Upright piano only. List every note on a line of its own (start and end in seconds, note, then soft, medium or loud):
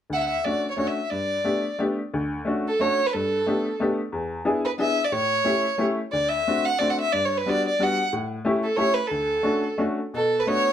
0.10 0.36 D2 soft
0.45 0.63 A3 soft
0.45 0.63 C#4 soft
0.45 0.64 D4 soft
0.45 0.64 F#4 soft
0.77 0.96 A3 soft
0.77 0.96 C#4 soft
0.77 0.96 D4 soft
0.77 0.97 F#4 soft
1.11 1.37 G2 soft
1.44 1.63 A3 medium
1.44 1.63 B3 soft
1.44 1.63 D4 soft
1.44 1.63 G4 medium
1.79 1.97 A3 medium
1.79 1.97 B3 soft
1.79 1.97 D4 medium
1.79 1.98 G4 medium
2.14 2.39 D2 medium
2.45 2.64 A3 medium
2.45 2.65 C#4 soft
2.45 2.65 D4 soft
2.45 2.65 F#4 medium
2.79 2.98 A3 soft
2.79 2.99 C#4 soft
2.79 2.99 D4 soft
2.79 2.99 F#4 medium
3.14 3.40 G2 soft
3.46 3.65 A3 medium
3.46 3.65 B3 soft
3.46 3.66 D4 soft
3.46 3.66 G4 medium
3.80 3.98 A3 medium
3.80 3.98 B3 medium
3.80 3.99 D4 medium
3.80 3.99 G4 medium
4.12 4.38 E2 medium
4.45 4.63 B3 medium
4.45 4.64 D4 medium
4.45 4.64 E4 medium
4.45 4.64 G#4 medium
4.78 4.96 B3 medium
4.78 4.97 D4 medium
4.78 4.97 E4 soft
4.78 4.97 G#4 medium
5.12 5.38 A2 soft
5.44 5.63 A3 medium
5.44 5.64 C#4 soft
5.44 5.64 E4 medium
5.44 5.64 G4 medium
5.78 5.97 A3 medium
5.78 5.98 C#4 medium
5.78 5.98 E4 medium
5.78 5.98 G4 medium
6.13 6.39 D2 soft
6.47 6.65 A3 soft
6.47 6.65 C4 soft
6.47 6.66 D4 soft
6.47 6.66 F#4 medium
6.80 6.98 A3 medium
6.80 6.98 C4 soft
6.80 6.99 D4 soft
6.80 6.99 F#4 medium
7.13 7.39 G2 soft
7.46 7.64 G3 medium
7.46 7.65 B3 soft
7.46 7.65 D4 soft
7.46 7.65 F#4 medium
7.79 7.97 G3 medium
7.79 7.98 B3 soft
7.79 7.98 D4 soft
7.79 7.98 F#4 medium
8.13 8.38 A2 medium
8.45 8.63 A3 medium
8.45 8.64 C#4 medium
8.45 8.64 E4 medium
8.45 8.64 G4 medium
8.77 8.96 A3 medium
8.77 8.96 C#4 soft
8.77 8.96 E4 medium
8.77 8.97 G4 medium
9.11 9.37 D2 soft
9.43 9.63 A3 medium
9.43 9.63 C#4 medium
9.43 9.63 D4 medium
9.43 9.63 F#4 medium
9.78 9.97 A3 medium
9.78 9.98 C#4 medium
9.78 9.98 D4 medium
9.78 9.98 F#4 medium
10.14 10.40 B2 soft
10.46 10.65 A3 medium
10.46 10.66 B3 soft
10.46 10.66 D4 soft
10.46 10.66 F#4 medium